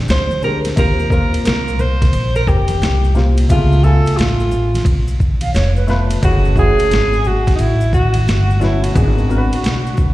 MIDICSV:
0, 0, Header, 1, 7, 480
1, 0, Start_track
1, 0, Tempo, 681818
1, 543, Time_signature, 4, 2, 24, 8
1, 7136, End_track
2, 0, Start_track
2, 0, Title_t, "Flute"
2, 0, Program_c, 0, 73
2, 3814, Note_on_c, 0, 77, 77
2, 3897, Note_off_c, 0, 77, 0
2, 3900, Note_on_c, 0, 73, 81
2, 4048, Note_off_c, 0, 73, 0
2, 4055, Note_on_c, 0, 71, 75
2, 4365, Note_off_c, 0, 71, 0
2, 7136, End_track
3, 0, Start_track
3, 0, Title_t, "Alto saxophone"
3, 0, Program_c, 1, 65
3, 80, Note_on_c, 1, 72, 91
3, 295, Note_off_c, 1, 72, 0
3, 311, Note_on_c, 1, 70, 85
3, 417, Note_off_c, 1, 70, 0
3, 554, Note_on_c, 1, 70, 102
3, 772, Note_off_c, 1, 70, 0
3, 791, Note_on_c, 1, 70, 82
3, 1010, Note_off_c, 1, 70, 0
3, 1034, Note_on_c, 1, 70, 87
3, 1270, Note_on_c, 1, 72, 99
3, 1281, Note_off_c, 1, 70, 0
3, 1658, Note_off_c, 1, 72, 0
3, 1662, Note_on_c, 1, 70, 85
3, 1750, Note_on_c, 1, 67, 79
3, 1761, Note_off_c, 1, 70, 0
3, 2226, Note_off_c, 1, 67, 0
3, 2471, Note_on_c, 1, 65, 93
3, 2705, Note_on_c, 1, 69, 96
3, 2716, Note_off_c, 1, 65, 0
3, 2939, Note_on_c, 1, 65, 81
3, 2949, Note_off_c, 1, 69, 0
3, 3421, Note_off_c, 1, 65, 0
3, 4399, Note_on_c, 1, 66, 109
3, 4615, Note_off_c, 1, 66, 0
3, 4640, Note_on_c, 1, 68, 102
3, 5118, Note_on_c, 1, 66, 96
3, 5128, Note_off_c, 1, 68, 0
3, 5314, Note_off_c, 1, 66, 0
3, 5318, Note_on_c, 1, 63, 66
3, 5353, Note_on_c, 1, 64, 94
3, 5363, Note_off_c, 1, 63, 0
3, 5588, Note_off_c, 1, 64, 0
3, 5592, Note_on_c, 1, 66, 93
3, 6070, Note_on_c, 1, 64, 83
3, 6081, Note_off_c, 1, 66, 0
3, 6222, Note_on_c, 1, 66, 82
3, 6233, Note_off_c, 1, 64, 0
3, 7136, Note_off_c, 1, 66, 0
3, 7136, End_track
4, 0, Start_track
4, 0, Title_t, "Upright piano"
4, 0, Program_c, 2, 0
4, 0, Note_on_c, 2, 56, 77
4, 0, Note_on_c, 2, 60, 79
4, 0, Note_on_c, 2, 62, 76
4, 0, Note_on_c, 2, 67, 98
4, 184, Note_off_c, 2, 56, 0
4, 186, Note_off_c, 2, 60, 0
4, 190, Note_off_c, 2, 62, 0
4, 193, Note_off_c, 2, 67, 0
4, 298, Note_on_c, 2, 56, 62
4, 304, Note_on_c, 2, 60, 59
4, 310, Note_on_c, 2, 62, 56
4, 315, Note_on_c, 2, 67, 72
4, 494, Note_off_c, 2, 56, 0
4, 496, Note_off_c, 2, 60, 0
4, 500, Note_off_c, 2, 62, 0
4, 502, Note_off_c, 2, 67, 0
4, 536, Note_on_c, 2, 58, 72
4, 543, Note_on_c, 2, 60, 72
4, 547, Note_on_c, 2, 65, 66
4, 555, Note_on_c, 2, 67, 86
4, 733, Note_off_c, 2, 58, 0
4, 736, Note_off_c, 2, 60, 0
4, 738, Note_off_c, 2, 65, 0
4, 742, Note_off_c, 2, 67, 0
4, 777, Note_on_c, 2, 58, 71
4, 783, Note_on_c, 2, 60, 69
4, 789, Note_on_c, 2, 65, 62
4, 795, Note_on_c, 2, 70, 74
4, 1483, Note_off_c, 2, 58, 0
4, 1486, Note_off_c, 2, 60, 0
4, 1489, Note_off_c, 2, 65, 0
4, 1492, Note_off_c, 2, 70, 0
4, 2215, Note_on_c, 2, 58, 63
4, 2224, Note_on_c, 2, 60, 58
4, 2227, Note_on_c, 2, 65, 58
4, 2235, Note_on_c, 2, 67, 72
4, 2412, Note_off_c, 2, 58, 0
4, 2416, Note_off_c, 2, 60, 0
4, 2418, Note_off_c, 2, 65, 0
4, 2422, Note_off_c, 2, 67, 0
4, 2457, Note_on_c, 2, 57, 78
4, 2463, Note_on_c, 2, 59, 72
4, 2469, Note_on_c, 2, 65, 72
4, 2476, Note_on_c, 2, 68, 86
4, 2653, Note_off_c, 2, 57, 0
4, 2656, Note_off_c, 2, 59, 0
4, 2659, Note_off_c, 2, 65, 0
4, 2663, Note_off_c, 2, 68, 0
4, 2697, Note_on_c, 2, 57, 66
4, 2702, Note_on_c, 2, 59, 63
4, 2707, Note_on_c, 2, 65, 66
4, 2715, Note_on_c, 2, 80, 79
4, 3403, Note_off_c, 2, 57, 0
4, 3406, Note_off_c, 2, 59, 0
4, 3408, Note_off_c, 2, 65, 0
4, 3412, Note_off_c, 2, 80, 0
4, 4134, Note_on_c, 2, 57, 82
4, 4138, Note_on_c, 2, 59, 69
4, 4146, Note_on_c, 2, 65, 70
4, 4151, Note_on_c, 2, 71, 87
4, 4332, Note_off_c, 2, 57, 0
4, 4334, Note_off_c, 2, 59, 0
4, 4337, Note_off_c, 2, 65, 0
4, 4340, Note_off_c, 2, 71, 0
4, 4378, Note_on_c, 2, 57, 81
4, 4385, Note_on_c, 2, 61, 71
4, 4390, Note_on_c, 2, 64, 74
4, 4397, Note_on_c, 2, 68, 93
4, 4574, Note_off_c, 2, 57, 0
4, 4577, Note_off_c, 2, 61, 0
4, 4580, Note_off_c, 2, 64, 0
4, 4583, Note_off_c, 2, 68, 0
4, 4615, Note_on_c, 2, 57, 72
4, 4623, Note_on_c, 2, 61, 65
4, 4628, Note_on_c, 2, 64, 66
4, 4634, Note_on_c, 2, 67, 62
4, 4680, Note_on_c, 2, 68, 77
4, 4688, Note_off_c, 2, 67, 0
4, 5322, Note_off_c, 2, 57, 0
4, 5326, Note_off_c, 2, 61, 0
4, 5328, Note_off_c, 2, 64, 0
4, 5355, Note_off_c, 2, 68, 0
4, 6052, Note_on_c, 2, 57, 63
4, 6061, Note_on_c, 2, 61, 64
4, 6065, Note_on_c, 2, 64, 55
4, 6073, Note_on_c, 2, 71, 68
4, 6251, Note_off_c, 2, 57, 0
4, 6255, Note_off_c, 2, 61, 0
4, 6257, Note_off_c, 2, 64, 0
4, 6261, Note_off_c, 2, 71, 0
4, 6295, Note_on_c, 2, 59, 78
4, 6302, Note_on_c, 2, 62, 67
4, 6307, Note_on_c, 2, 66, 72
4, 6314, Note_on_c, 2, 68, 91
4, 6492, Note_off_c, 2, 59, 0
4, 6496, Note_off_c, 2, 62, 0
4, 6498, Note_off_c, 2, 66, 0
4, 6502, Note_off_c, 2, 68, 0
4, 6533, Note_on_c, 2, 59, 70
4, 6541, Note_on_c, 2, 62, 65
4, 6547, Note_on_c, 2, 66, 69
4, 6554, Note_on_c, 2, 70, 66
4, 6597, Note_on_c, 2, 71, 82
4, 6607, Note_off_c, 2, 70, 0
4, 7136, Note_off_c, 2, 59, 0
4, 7136, Note_off_c, 2, 62, 0
4, 7136, Note_off_c, 2, 66, 0
4, 7136, Note_off_c, 2, 71, 0
4, 7136, End_track
5, 0, Start_track
5, 0, Title_t, "Upright bass"
5, 0, Program_c, 3, 32
5, 61, Note_on_c, 3, 38, 88
5, 518, Note_off_c, 3, 38, 0
5, 544, Note_on_c, 3, 39, 97
5, 918, Note_off_c, 3, 39, 0
5, 1022, Note_on_c, 3, 36, 88
5, 1478, Note_off_c, 3, 36, 0
5, 1501, Note_on_c, 3, 34, 82
5, 1730, Note_off_c, 3, 34, 0
5, 1741, Note_on_c, 3, 29, 80
5, 1970, Note_off_c, 3, 29, 0
5, 1983, Note_on_c, 3, 36, 93
5, 2439, Note_off_c, 3, 36, 0
5, 2462, Note_on_c, 3, 37, 98
5, 2838, Note_off_c, 3, 37, 0
5, 2943, Note_on_c, 3, 33, 84
5, 3399, Note_off_c, 3, 33, 0
5, 3414, Note_on_c, 3, 35, 83
5, 3874, Note_off_c, 3, 35, 0
5, 3903, Note_on_c, 3, 29, 94
5, 4359, Note_off_c, 3, 29, 0
5, 4383, Note_on_c, 3, 30, 108
5, 4758, Note_off_c, 3, 30, 0
5, 4860, Note_on_c, 3, 32, 87
5, 5318, Note_off_c, 3, 32, 0
5, 5341, Note_on_c, 3, 33, 90
5, 5798, Note_off_c, 3, 33, 0
5, 5822, Note_on_c, 3, 31, 98
5, 6278, Note_off_c, 3, 31, 0
5, 6304, Note_on_c, 3, 32, 100
5, 6678, Note_off_c, 3, 32, 0
5, 6782, Note_on_c, 3, 35, 89
5, 7136, Note_off_c, 3, 35, 0
5, 7136, End_track
6, 0, Start_track
6, 0, Title_t, "Muted upright bass strokes"
6, 941, Note_on_c, 9, 29, 44
6, 1012, Note_off_c, 9, 29, 0
6, 2859, Note_on_c, 9, 29, 47
6, 2929, Note_off_c, 9, 29, 0
6, 4779, Note_on_c, 9, 29, 44
6, 4849, Note_off_c, 9, 29, 0
6, 6696, Note_on_c, 9, 29, 46
6, 6766, Note_off_c, 9, 29, 0
6, 7136, End_track
7, 0, Start_track
7, 0, Title_t, "Drums"
7, 57, Note_on_c, 9, 82, 63
7, 71, Note_on_c, 9, 38, 111
7, 73, Note_on_c, 9, 44, 44
7, 73, Note_on_c, 9, 51, 61
7, 128, Note_off_c, 9, 82, 0
7, 141, Note_off_c, 9, 38, 0
7, 143, Note_off_c, 9, 44, 0
7, 143, Note_off_c, 9, 51, 0
7, 217, Note_on_c, 9, 63, 55
7, 217, Note_on_c, 9, 82, 40
7, 287, Note_off_c, 9, 63, 0
7, 287, Note_off_c, 9, 82, 0
7, 300, Note_on_c, 9, 64, 65
7, 300, Note_on_c, 9, 82, 46
7, 370, Note_off_c, 9, 64, 0
7, 370, Note_off_c, 9, 82, 0
7, 454, Note_on_c, 9, 82, 50
7, 457, Note_on_c, 9, 51, 59
7, 467, Note_on_c, 9, 38, 33
7, 525, Note_off_c, 9, 82, 0
7, 527, Note_off_c, 9, 51, 0
7, 537, Note_off_c, 9, 38, 0
7, 543, Note_on_c, 9, 51, 69
7, 543, Note_on_c, 9, 82, 71
7, 544, Note_on_c, 9, 36, 113
7, 613, Note_off_c, 9, 51, 0
7, 613, Note_off_c, 9, 82, 0
7, 614, Note_off_c, 9, 36, 0
7, 701, Note_on_c, 9, 82, 37
7, 771, Note_off_c, 9, 82, 0
7, 777, Note_on_c, 9, 36, 87
7, 785, Note_on_c, 9, 82, 44
7, 847, Note_off_c, 9, 36, 0
7, 856, Note_off_c, 9, 82, 0
7, 943, Note_on_c, 9, 82, 42
7, 944, Note_on_c, 9, 51, 52
7, 1014, Note_off_c, 9, 82, 0
7, 1015, Note_off_c, 9, 51, 0
7, 1024, Note_on_c, 9, 44, 51
7, 1024, Note_on_c, 9, 51, 62
7, 1027, Note_on_c, 9, 64, 55
7, 1027, Note_on_c, 9, 82, 55
7, 1038, Note_on_c, 9, 38, 124
7, 1094, Note_off_c, 9, 44, 0
7, 1094, Note_off_c, 9, 51, 0
7, 1098, Note_off_c, 9, 64, 0
7, 1098, Note_off_c, 9, 82, 0
7, 1108, Note_off_c, 9, 38, 0
7, 1181, Note_on_c, 9, 82, 42
7, 1251, Note_off_c, 9, 82, 0
7, 1261, Note_on_c, 9, 64, 68
7, 1261, Note_on_c, 9, 82, 47
7, 1332, Note_off_c, 9, 64, 0
7, 1332, Note_off_c, 9, 82, 0
7, 1421, Note_on_c, 9, 36, 89
7, 1422, Note_on_c, 9, 51, 54
7, 1422, Note_on_c, 9, 63, 58
7, 1422, Note_on_c, 9, 82, 43
7, 1432, Note_on_c, 9, 38, 33
7, 1491, Note_off_c, 9, 36, 0
7, 1492, Note_off_c, 9, 51, 0
7, 1492, Note_off_c, 9, 63, 0
7, 1492, Note_off_c, 9, 82, 0
7, 1499, Note_on_c, 9, 51, 68
7, 1502, Note_off_c, 9, 38, 0
7, 1503, Note_on_c, 9, 82, 57
7, 1570, Note_off_c, 9, 51, 0
7, 1574, Note_off_c, 9, 82, 0
7, 1657, Note_on_c, 9, 82, 51
7, 1728, Note_off_c, 9, 82, 0
7, 1742, Note_on_c, 9, 36, 75
7, 1746, Note_on_c, 9, 82, 43
7, 1812, Note_off_c, 9, 36, 0
7, 1816, Note_off_c, 9, 82, 0
7, 1886, Note_on_c, 9, 51, 53
7, 1894, Note_on_c, 9, 63, 60
7, 1894, Note_on_c, 9, 82, 41
7, 1956, Note_off_c, 9, 51, 0
7, 1964, Note_off_c, 9, 63, 0
7, 1964, Note_off_c, 9, 82, 0
7, 1983, Note_on_c, 9, 82, 63
7, 1994, Note_on_c, 9, 38, 109
7, 1996, Note_on_c, 9, 44, 48
7, 1996, Note_on_c, 9, 51, 65
7, 2054, Note_off_c, 9, 82, 0
7, 2065, Note_off_c, 9, 38, 0
7, 2066, Note_off_c, 9, 44, 0
7, 2066, Note_off_c, 9, 51, 0
7, 2143, Note_on_c, 9, 82, 39
7, 2213, Note_off_c, 9, 82, 0
7, 2218, Note_on_c, 9, 64, 68
7, 2218, Note_on_c, 9, 82, 45
7, 2233, Note_on_c, 9, 38, 35
7, 2288, Note_off_c, 9, 64, 0
7, 2288, Note_off_c, 9, 82, 0
7, 2303, Note_off_c, 9, 38, 0
7, 2374, Note_on_c, 9, 82, 52
7, 2377, Note_on_c, 9, 51, 60
7, 2444, Note_off_c, 9, 82, 0
7, 2447, Note_off_c, 9, 51, 0
7, 2460, Note_on_c, 9, 82, 72
7, 2464, Note_on_c, 9, 36, 111
7, 2465, Note_on_c, 9, 51, 71
7, 2531, Note_off_c, 9, 82, 0
7, 2535, Note_off_c, 9, 36, 0
7, 2536, Note_off_c, 9, 51, 0
7, 2619, Note_on_c, 9, 82, 37
7, 2690, Note_off_c, 9, 82, 0
7, 2701, Note_on_c, 9, 82, 44
7, 2772, Note_off_c, 9, 82, 0
7, 2858, Note_on_c, 9, 82, 39
7, 2868, Note_on_c, 9, 51, 55
7, 2929, Note_off_c, 9, 82, 0
7, 2938, Note_off_c, 9, 51, 0
7, 2946, Note_on_c, 9, 64, 55
7, 2946, Note_on_c, 9, 82, 59
7, 2948, Note_on_c, 9, 44, 45
7, 2948, Note_on_c, 9, 51, 67
7, 2962, Note_on_c, 9, 38, 114
7, 3016, Note_off_c, 9, 64, 0
7, 3016, Note_off_c, 9, 82, 0
7, 3018, Note_off_c, 9, 44, 0
7, 3018, Note_off_c, 9, 51, 0
7, 3032, Note_off_c, 9, 38, 0
7, 3098, Note_on_c, 9, 82, 44
7, 3168, Note_off_c, 9, 82, 0
7, 3178, Note_on_c, 9, 64, 65
7, 3178, Note_on_c, 9, 82, 46
7, 3248, Note_off_c, 9, 64, 0
7, 3248, Note_off_c, 9, 82, 0
7, 3340, Note_on_c, 9, 63, 60
7, 3340, Note_on_c, 9, 82, 43
7, 3346, Note_on_c, 9, 51, 57
7, 3356, Note_on_c, 9, 38, 32
7, 3411, Note_off_c, 9, 63, 0
7, 3411, Note_off_c, 9, 82, 0
7, 3414, Note_on_c, 9, 36, 98
7, 3416, Note_off_c, 9, 51, 0
7, 3419, Note_on_c, 9, 51, 71
7, 3421, Note_on_c, 9, 82, 58
7, 3426, Note_off_c, 9, 38, 0
7, 3485, Note_off_c, 9, 36, 0
7, 3489, Note_off_c, 9, 51, 0
7, 3491, Note_off_c, 9, 82, 0
7, 3574, Note_on_c, 9, 82, 55
7, 3644, Note_off_c, 9, 82, 0
7, 3662, Note_on_c, 9, 36, 74
7, 3664, Note_on_c, 9, 82, 42
7, 3733, Note_off_c, 9, 36, 0
7, 3735, Note_off_c, 9, 82, 0
7, 3808, Note_on_c, 9, 51, 58
7, 3813, Note_on_c, 9, 63, 57
7, 3813, Note_on_c, 9, 82, 38
7, 3879, Note_off_c, 9, 51, 0
7, 3884, Note_off_c, 9, 63, 0
7, 3884, Note_off_c, 9, 82, 0
7, 3901, Note_on_c, 9, 82, 61
7, 3914, Note_on_c, 9, 38, 100
7, 3916, Note_on_c, 9, 44, 47
7, 3916, Note_on_c, 9, 51, 62
7, 3972, Note_off_c, 9, 82, 0
7, 3985, Note_off_c, 9, 38, 0
7, 3986, Note_off_c, 9, 44, 0
7, 3986, Note_off_c, 9, 51, 0
7, 4058, Note_on_c, 9, 82, 39
7, 4129, Note_off_c, 9, 82, 0
7, 4140, Note_on_c, 9, 64, 64
7, 4140, Note_on_c, 9, 82, 45
7, 4152, Note_on_c, 9, 38, 36
7, 4210, Note_off_c, 9, 64, 0
7, 4210, Note_off_c, 9, 82, 0
7, 4223, Note_off_c, 9, 38, 0
7, 4296, Note_on_c, 9, 82, 49
7, 4298, Note_on_c, 9, 51, 59
7, 4367, Note_off_c, 9, 82, 0
7, 4368, Note_off_c, 9, 51, 0
7, 4384, Note_on_c, 9, 36, 113
7, 4384, Note_on_c, 9, 51, 69
7, 4384, Note_on_c, 9, 82, 69
7, 4454, Note_off_c, 9, 51, 0
7, 4455, Note_off_c, 9, 36, 0
7, 4455, Note_off_c, 9, 82, 0
7, 4540, Note_on_c, 9, 82, 36
7, 4610, Note_off_c, 9, 82, 0
7, 4617, Note_on_c, 9, 36, 88
7, 4621, Note_on_c, 9, 82, 44
7, 4687, Note_off_c, 9, 36, 0
7, 4692, Note_off_c, 9, 82, 0
7, 4780, Note_on_c, 9, 82, 40
7, 4785, Note_on_c, 9, 51, 54
7, 4851, Note_off_c, 9, 82, 0
7, 4856, Note_off_c, 9, 51, 0
7, 4867, Note_on_c, 9, 64, 53
7, 4867, Note_on_c, 9, 82, 53
7, 4868, Note_on_c, 9, 44, 51
7, 4868, Note_on_c, 9, 51, 71
7, 4882, Note_on_c, 9, 38, 119
7, 4937, Note_off_c, 9, 64, 0
7, 4937, Note_off_c, 9, 82, 0
7, 4938, Note_off_c, 9, 44, 0
7, 4938, Note_off_c, 9, 51, 0
7, 4952, Note_off_c, 9, 38, 0
7, 5022, Note_on_c, 9, 82, 40
7, 5092, Note_off_c, 9, 82, 0
7, 5100, Note_on_c, 9, 64, 65
7, 5100, Note_on_c, 9, 82, 47
7, 5170, Note_off_c, 9, 64, 0
7, 5170, Note_off_c, 9, 82, 0
7, 5259, Note_on_c, 9, 63, 61
7, 5259, Note_on_c, 9, 82, 41
7, 5261, Note_on_c, 9, 36, 93
7, 5264, Note_on_c, 9, 51, 58
7, 5274, Note_on_c, 9, 38, 34
7, 5330, Note_off_c, 9, 63, 0
7, 5330, Note_off_c, 9, 82, 0
7, 5332, Note_off_c, 9, 36, 0
7, 5334, Note_off_c, 9, 51, 0
7, 5341, Note_on_c, 9, 51, 65
7, 5341, Note_on_c, 9, 82, 59
7, 5344, Note_off_c, 9, 38, 0
7, 5411, Note_off_c, 9, 82, 0
7, 5412, Note_off_c, 9, 51, 0
7, 5495, Note_on_c, 9, 82, 53
7, 5566, Note_off_c, 9, 82, 0
7, 5583, Note_on_c, 9, 36, 86
7, 5586, Note_on_c, 9, 82, 47
7, 5653, Note_off_c, 9, 36, 0
7, 5656, Note_off_c, 9, 82, 0
7, 5729, Note_on_c, 9, 51, 54
7, 5738, Note_on_c, 9, 63, 56
7, 5738, Note_on_c, 9, 82, 40
7, 5799, Note_off_c, 9, 51, 0
7, 5808, Note_off_c, 9, 63, 0
7, 5808, Note_off_c, 9, 82, 0
7, 5828, Note_on_c, 9, 82, 63
7, 5835, Note_on_c, 9, 38, 105
7, 5836, Note_on_c, 9, 44, 50
7, 5836, Note_on_c, 9, 51, 67
7, 5899, Note_off_c, 9, 82, 0
7, 5905, Note_off_c, 9, 38, 0
7, 5907, Note_off_c, 9, 44, 0
7, 5907, Note_off_c, 9, 51, 0
7, 5987, Note_on_c, 9, 82, 38
7, 6058, Note_off_c, 9, 82, 0
7, 6064, Note_on_c, 9, 64, 64
7, 6064, Note_on_c, 9, 82, 44
7, 6074, Note_on_c, 9, 38, 35
7, 6134, Note_off_c, 9, 64, 0
7, 6134, Note_off_c, 9, 82, 0
7, 6144, Note_off_c, 9, 38, 0
7, 6221, Note_on_c, 9, 51, 58
7, 6222, Note_on_c, 9, 82, 51
7, 6292, Note_off_c, 9, 51, 0
7, 6293, Note_off_c, 9, 82, 0
7, 6304, Note_on_c, 9, 36, 112
7, 6305, Note_on_c, 9, 51, 69
7, 6309, Note_on_c, 9, 82, 74
7, 6375, Note_off_c, 9, 36, 0
7, 6375, Note_off_c, 9, 51, 0
7, 6379, Note_off_c, 9, 82, 0
7, 6464, Note_on_c, 9, 82, 38
7, 6534, Note_off_c, 9, 82, 0
7, 6549, Note_on_c, 9, 82, 45
7, 6619, Note_off_c, 9, 82, 0
7, 6706, Note_on_c, 9, 82, 40
7, 6707, Note_on_c, 9, 51, 54
7, 6776, Note_off_c, 9, 82, 0
7, 6778, Note_off_c, 9, 51, 0
7, 6788, Note_on_c, 9, 44, 49
7, 6788, Note_on_c, 9, 51, 64
7, 6794, Note_on_c, 9, 64, 55
7, 6794, Note_on_c, 9, 82, 56
7, 6802, Note_on_c, 9, 38, 120
7, 6858, Note_off_c, 9, 44, 0
7, 6858, Note_off_c, 9, 51, 0
7, 6864, Note_off_c, 9, 64, 0
7, 6864, Note_off_c, 9, 82, 0
7, 6872, Note_off_c, 9, 38, 0
7, 6945, Note_on_c, 9, 82, 41
7, 7016, Note_off_c, 9, 82, 0
7, 7020, Note_on_c, 9, 64, 69
7, 7020, Note_on_c, 9, 82, 48
7, 7025, Note_on_c, 9, 36, 95
7, 7091, Note_off_c, 9, 64, 0
7, 7091, Note_off_c, 9, 82, 0
7, 7095, Note_off_c, 9, 36, 0
7, 7136, End_track
0, 0, End_of_file